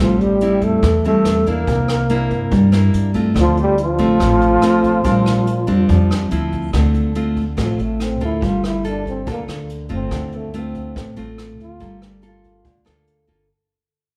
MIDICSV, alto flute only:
0, 0, Header, 1, 2, 480
1, 0, Start_track
1, 0, Key_signature, -1, "minor"
1, 0, Tempo, 422535
1, 1893, Time_signature, 4, 2, 24, 8
1, 16093, End_track
2, 0, Start_track
2, 0, Title_t, "Alto flute"
2, 0, Program_c, 0, 73
2, 6, Note_on_c, 0, 65, 70
2, 247, Note_on_c, 0, 67, 68
2, 264, Note_off_c, 0, 65, 0
2, 720, Note_on_c, 0, 69, 71
2, 737, Note_off_c, 0, 67, 0
2, 1187, Note_off_c, 0, 69, 0
2, 1201, Note_on_c, 0, 69, 73
2, 1696, Note_on_c, 0, 70, 74
2, 1713, Note_off_c, 0, 69, 0
2, 3113, Note_off_c, 0, 70, 0
2, 3839, Note_on_c, 0, 65, 88
2, 4049, Note_off_c, 0, 65, 0
2, 4077, Note_on_c, 0, 67, 75
2, 4288, Note_off_c, 0, 67, 0
2, 4297, Note_on_c, 0, 65, 90
2, 7127, Note_off_c, 0, 65, 0
2, 16093, End_track
0, 0, End_of_file